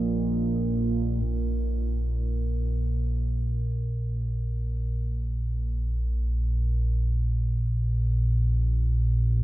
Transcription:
Already playing: synth drone A#1 A#2, ambient pad A#2 D#4 D#5, singing bowl A#4
1.26 synth drone A#1 A#2

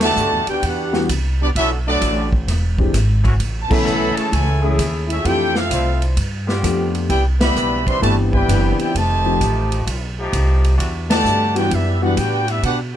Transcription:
Already playing: upright bass E2, trombone section E3 G3 D4 F#4
0.00 trombone section B2 D3 A3, trumpet section G4 D5 F#5 A5, snare, ride
0.16 upright bass G2, trombone section E3 G3 D4 F#4, hi-hat pedal
0.32 upright bass E2
0.47 upright bass D2, trombone section B3 D4 G4, trumpet section D4 F#4 B4 G5, ride
0.62 upright bass E2, trombone section B3 D4 G4, trumpet section D4 G4 B4 F#5, kick, ride
0.93 grand piano E3 G3 B3 D4 F#4, snare
1.09 upright bass C2, kick, hi-hat pedal, ride
1.41 trombone section G3 B3 D4, trumpet section B3 F#4 G4 D5
1.55 upright bass B1, trombone section F#3 B3 D4 E4 A4, trumpet section C#4 F#4 A4 E5, kick, ride
1.87 trombone section F#3 A3 D4, trumpet section B3 F#4 A4 D5
2.01 upright bass A1, kick, hi-hat pedal, ride
2.32 kick
2.48 upright bass E1, kick, snare, ride
2.78 grand piano E3 G#3 C4 D4 G4, kick
2.94 upright bass G#1, kick, snare, hi-hat pedal, ride
3.23 trombone section E3 A3 C#4 F#4, kick, ride
3.40 upright bass A1, kick, ride
3.62 trumpet section A5
3.69 trombone section E3 A3 B3, grand piano E3 A3 C#4 A4, trumpet section A4 E5 G#5 B5, muted upright bass stroke, kick, crash
3.84 upright bass B1, trombone section E3 C#4 A4, hi-hat pedal
4.13 trombone section C#3 E3 A3, trumpet section E4 G#4 C#5 A5, muted upright bass stroke, ride
4.29 upright bass C#2, trombone section C#3 E3 A3, trumpet section A4 G#5, kick
4.33 trumpet section E4 C#5, ride
4.62 grand piano E3 G#3 A3 C#4 G#4, trombone section A3 C#4 E4 G#4
4.79 upright bass D#2, kick, hi-hat pedal, ride
5.07 trombone section G#3 C#4 E4, trumpet section C#4, ride
5.11 trumpet section G#4 A4 E5
5.23 upright bass F2, grand piano E3 A3 C4 D4 F4, trumpet section E4 C5 G5, trombone section G4, kick, ride
5.27 trumpet section A4
5.55 trombone section A3 C4 F4, trumpet section C4 A4 E5 F5, snare
5.70 upright bass C2, trombone section F3 D4 E4 C5, kick, hi-hat pedal, ride
6.02 ride
6.17 upright bass G2, kick, ride
6.47 trombone section G3 B3 F4 G4, snare
6.62 upright bass F2, grand piano F3 A3 B3 D4 G4, kick, hi-hat pedal, ride
6.95 ride
7.09 upright bass C2, trombone section B3 E4 G4, trumpet section E4 B4 D5 G5, kick, ride
7.39 trombone section E3 G3 B3, trumpet section G4 D5 E5 B5, snare, ride
7.55 upright bass B1, trombone section E3 C4 D4 B4, hi-hat pedal
7.87 trombone section E3 G3 C4, trumpet section G4 D5 E5 C6, kick, ride
8.01 upright bass G1, grand piano E3 B3 C4 D4 G4, trombone section A3, trumpet section F#4 B4 D5 A5, kick, ride
8.32 trombone section E3 B3 D4 E4 G4 B4, trumpet section E4 B4 D5 G5, kick
8.49 upright bass F#1, grand piano E3 B3 C4 D4 G4, kick, hi-hat pedal, ride
8.78 trombone section B3 E4 G4, trumpet section E4 B4 D5 G5, muted upright bass stroke, ride
8.94 upright bass F1, trombone section C3 D#3 A3, trumpet section G4 C5 D#5 A5, kick, ride
9.25 grand piano F3 A3 C4 D#4 G4
9.41 upright bass A1, trombone section F3 A3 D#4 G4, kick, hi-hat pedal, ride
9.72 ride
9.87 upright bass B1, kick, ride
10.17 trombone section F3 A3 D#4 G4
10.33 upright bass C2, kick, hi-hat pedal, ride
10.64 ride
10.78 upright bass E2, trombone section E3 G3 D4 F#4, kick, ride
11.10 trombone section B2 D3 A3, trumpet section G4 D5 F#5 A5, snare, ride
11.24 upright bass G2, trombone section E3 G3 D4 G4, hi-hat pedal
11.55 grand piano E3 G3 B3 D4 F#4, trombone section B3 D4 G4, trumpet section D4 F#4 B4 G5, ride
11.70 upright bass F#2, trombone section G3 B3 E4, trumpet section G4 E5, kick, ride
11.74 trumpet section D4 B4
12.02 grand piano E3 G3 B3 D4 F#4, trombone section B3 D4 F#4, trumpet section D4 G4 B4 F#5
12.17 upright bass A2, trombone section B3 D4 G4, trumpet section D4 F#4 B4 G5, kick, hi-hat pedal, ride
12.48 trombone section G3 B3 E4, trumpet section D4 G4 B4 E5, ride
12.63 upright bass B2, trombone section B3 D4 F#4, trumpet section D4 G4 B4 F#5, kick, ride

